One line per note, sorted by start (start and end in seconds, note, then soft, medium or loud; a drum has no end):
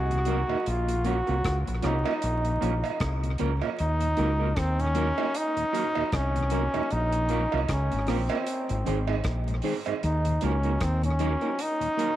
0.00 0.42 C2 loud
0.00 0.69 F#4 medium
0.09 0.18 D#2 medium
0.09 0.18 A#2 medium
0.09 closed hi-hat medium
0.25 0.37 F#3 medium
0.25 0.37 A#3 medium
0.25 0.38 A#3 medium
0.25 0.37 D#4 medium
0.25 0.39 D#4 medium
0.25 0.39 F#4 medium
0.25 0.39 A#4 loud
0.25 closed hi-hat medium
0.48 0.57 D#2 medium
0.48 0.57 A#2 medium
0.48 0.57 A#3 soft
0.48 0.56 D#4 medium
0.48 0.56 F#4 medium
0.48 0.56 A#4 medium
0.48 cowbell medium
0.66 1.20 A#1 medium
0.66 1.08 F4 medium
0.66 closed hi-hat medium
0.88 0.96 A#2 medium
0.88 closed hi-hat medium
1.04 1.15 F3 medium
1.04 1.15 A#3 medium
1.04 1.16 A#3 medium
1.04 1.15 C#4 medium
1.04 1.16 C#4 medium
1.04 1.17 F4 medium
1.04 1.58 F#4 medium
1.04 1.17 A#4 medium
1.04 closed hi-hat medium
1.27 1.43 C2 medium
1.27 1.34 A#3 medium
1.27 1.34 C#4 medium
1.27 1.34 F4 medium
1.27 1.34 A#4 medium
1.27 closed hi-hat soft
1.44 1.64 C#2 medium
1.44 kick loud
1.44 cross-stick loud
1.44 closed hi-hat medium
1.66 1.82 A#1 medium
1.66 1.74 A#2 medium
1.66 closed hi-hat medium
1.82 2.03 C2 medium
1.82 1.93 F3 medium
1.82 1.93 A#3 medium
1.82 1.94 A#3 medium
1.82 1.93 C#4 medium
1.82 1.95 C#4 medium
1.82 3.36 D#4 medium
1.82 1.95 F4 medium
1.82 1.95 A#4 medium
1.82 cross-stick medium
1.82 closed hi-hat medium
2.05 2.13 A#3 medium
2.05 2.13 A#3 soft
2.05 2.13 C#4 medium
2.05 2.12 C#4 medium
2.05 2.12 F4 medium
2.05 2.12 A#4 medium
2.05 cowbell medium
2.22 2.57 A#1 medium
2.22 closed hi-hat loud
2.44 2.52 A#2 medium
2.44 closed hi-hat soft
2.61 2.81 A#1 medium
2.61 2.72 F3 medium
2.61 2.72 A#3 medium
2.61 2.73 C#4 medium
2.61 2.72 C#4 medium
2.61 2.73 F4 medium
2.61 2.73 A#4 medium
2.61 closed hi-hat medium
2.83 2.91 A#2 medium
2.83 closed hi-hat soft
2.83 cowbell medium
3.00 3.35 C2 medium
3.00 kick loud
3.00 cross-stick loud
3.00 closed hi-hat medium
3.23 3.30 A#2 medium
3.23 closed hi-hat medium
3.38 3.60 C#2 medium
3.38 3.50 F3 medium
3.38 3.50 A#3 medium
3.38 3.50 C#4 medium
3.38 3.51 F4 medium
3.38 3.51 A#4 medium
3.38 closed hi-hat medium
3.61 3.70 A#2 medium
3.61 3.69 A#3 medium
3.61 3.68 C#4 medium
3.61 3.68 F4 medium
3.61 3.68 A#4 medium
3.61 cowbell medium
3.79 4.13 D#2 medium
3.79 4.59 D#4 loud
3.79 closed hi-hat medium
4.00 4.08 D#2 medium
4.00 4.08 A#2 medium
4.00 closed hi-hat medium
4.17 4.52 C#2 loud
4.17 4.27 F#3 medium
4.17 4.27 A#3 medium
4.17 4.28 A#3 medium
4.17 4.28 D#4 medium
4.17 4.29 D#4 medium
4.17 4.29 F#4 medium
4.17 4.29 A#4 medium
4.17 closed hi-hat medium
4.40 4.47 A#3 medium
4.40 4.47 D#4 medium
4.40 4.47 F#4 medium
4.40 4.46 A#4 medium
4.56 5.11 D#2 medium
4.56 4.82 C4 loud
4.56 kick loud
4.56 cross-stick loud
4.56 closed hi-hat medium
4.78 4.86 D#2 medium
4.78 4.86 A#2 medium
4.78 5.38 C#4 loud
4.78 closed hi-hat medium
4.95 5.05 F#3 medium
4.95 5.06 A#3 medium
4.95 5.06 D#4 loud
4.95 5.07 D#4 loud
4.95 5.07 F#4 medium
4.95 5.07 A#4 loud
4.95 closed hi-hat medium
5.17 5.25 A#3 medium
5.17 5.25 D#4 medium
5.17 5.25 F#4 medium
5.17 5.24 A#4 medium
5.17 cowbell medium
5.35 6.16 D#4 loud
5.35 closed hi-hat loud
5.57 5.64 D#2 medium
5.57 5.64 A#2 medium
5.57 closed hi-hat medium
5.73 5.84 F#3 medium
5.73 5.84 A#3 medium
5.73 5.84 D#4 medium
5.73 5.85 F#4 medium
5.73 5.85 A#4 medium
5.73 closed hi-hat medium
5.95 6.04 D#2 medium
5.95 6.04 A#2 medium
5.95 6.03 A#3 medium
5.95 6.03 D#4 medium
5.95 6.02 F#4 medium
5.95 6.02 A#4 medium
5.95 cowbell medium
6.12 6.67 C2 medium
6.12 6.93 C#4 loud
6.12 kick loud
6.12 cross-stick loud
6.12 closed hi-hat medium
6.35 6.43 D#2 medium
6.35 6.43 A#2 medium
6.35 closed hi-hat soft
6.50 6.62 F#3 medium
6.50 6.63 A#3 medium
6.50 6.62 A#3 medium
6.50 6.63 D#4 medium
6.50 6.62 D#4 medium
6.50 6.63 F#4 medium
6.50 6.63 A#4 medium
6.50 closed hi-hat medium
6.74 6.81 D#2 medium
6.74 6.81 A#2 medium
6.74 6.81 A#3 medium
6.74 6.81 D#4 medium
6.74 6.81 F#4 medium
6.74 6.80 A#4 medium
6.74 closed hi-hat soft
6.74 cowbell medium
6.90 7.45 A#1 loud
6.90 7.64 D#4 loud
6.90 closed hi-hat medium
7.12 7.20 A#2 medium
7.12 closed hi-hat medium
7.29 7.40 F3 medium
7.29 7.40 A#3 medium
7.29 7.41 A#3 medium
7.29 7.40 C#4 medium
7.29 7.41 C#4 medium
7.29 7.41 F4 medium
7.29 7.41 A#4 loud
7.29 closed hi-hat medium
7.52 7.67 C2 medium
7.52 7.59 A#3 medium
7.52 7.59 C#4 medium
7.52 7.59 F4 medium
7.52 7.59 A#4 medium
7.52 cowbell medium
7.64 7.72 D#4 medium
7.68 7.89 C#2 loud
7.68 8.11 C#4 medium
7.68 kick loud
7.68 cross-stick loud
7.68 closed hi-hat loud
7.91 8.06 G#1 medium
7.91 7.99 A#2 medium
7.91 closed hi-hat soft
8.07 8.28 A#1 medium
8.07 8.18 F3 medium
8.07 8.18 A#3 medium
8.07 8.19 A#3 medium
8.07 9.25 C4 medium
8.07 8.18 C#4 medium
8.07 8.19 C#4 medium
8.07 8.20 F4 medium
8.07 8.20 A#4 loud
8.07 cross-stick medium
8.07 open hi-hat medium
8.29 8.38 A#3 medium
8.29 8.37 A#3 medium
8.29 8.38 C#4 medium
8.29 8.37 C#4 medium
8.29 8.37 F4 medium
8.29 8.37 A#4 medium
8.29 closed hi-hat soft
8.29 cowbell medium
8.47 closed hi-hat loud
8.69 8.84 G#1 medium
8.69 8.77 G#2 medium
8.69 closed hi-hat medium
8.86 9.21 G#1 loud
8.86 8.96 D#3 medium
8.86 8.96 G#3 medium
8.86 8.97 C4 medium
8.86 8.96 C4 medium
8.86 8.97 D#4 medium
8.86 8.97 G#4 medium
8.86 8.98 C5 medium
8.86 closed hi-hat medium
9.07 9.16 G#2 medium
9.07 9.15 C4 medium
9.07 9.15 D#4 medium
9.07 9.15 G#4 medium
9.07 9.14 C5 medium
9.07 cowbell medium
9.24 9.59 A#1 medium
9.24 kick loud
9.24 cross-stick loud
9.24 closed hi-hat medium
9.47 9.55 G#2 medium
9.47 closed hi-hat soft
9.62 9.74 D#3 medium
9.62 9.74 G#3 medium
9.62 9.75 C4 medium
9.62 9.74 C4 medium
9.62 9.75 D#4 medium
9.62 9.75 G#4 medium
9.62 9.75 C5 medium
9.62 open hi-hat medium
9.86 9.94 G#2 medium
9.86 9.93 C4 medium
9.86 9.93 D#4 medium
9.86 9.93 G#4 medium
9.86 9.93 C5 medium
9.86 closed hi-hat soft
9.86 cowbell medium
10.03 10.37 D#2 loud
10.03 10.46 D#4 medium
10.03 closed hi-hat medium
10.25 10.33 D#2 medium
10.25 10.33 A#2 medium
10.25 closed hi-hat medium
10.41 10.77 C#2 loud
10.41 10.52 F#3 medium
10.41 10.52 A#3 medium
10.41 10.53 A#3 medium
10.41 10.85 C#4 medium
10.41 10.52 D#4 medium
10.41 10.53 D#4 medium
10.41 10.54 F#4 medium
10.41 10.54 A#4 medium
10.41 closed hi-hat medium
10.63 10.71 A#3 medium
10.63 10.71 D#4 medium
10.63 10.71 F#4 medium
10.63 10.71 A#4 medium
10.63 closed hi-hat soft
10.80 11.35 D#2 loud
10.80 11.04 C4 medium
10.80 kick loud
10.80 cross-stick loud
10.80 closed hi-hat medium
11.03 11.11 D#2 medium
11.03 11.11 A#2 medium
11.03 11.63 C#4 medium
11.03 closed hi-hat medium
11.19 11.30 F#3 medium
11.19 11.30 A#3 medium
11.19 11.31 A#3 medium
11.19 11.31 D#4 medium
11.19 11.30 D#4 medium
11.19 11.31 F#4 loud
11.19 11.32 A#4 loud
11.19 closed hi-hat medium
11.41 11.49 A#3 medium
11.41 11.50 D#4 medium
11.41 11.49 D#4 medium
11.41 11.49 F#4 medium
11.41 11.49 A#4 medium
11.41 closed hi-hat soft
11.59 12.16 D#4 loud
11.59 closed hi-hat loud
11.80 11.88 D#2 medium
11.80 11.88 A#2 medium
11.80 closed hi-hat soft
11.97 12.08 F#3 medium
11.97 12.08 A#3 medium
11.97 12.09 A#3 medium
11.97 12.08 D#4 medium
11.97 12.09 D#4 medium
11.97 12.09 F#4 medium
11.97 12.09 A#4 medium
11.97 closed hi-hat medium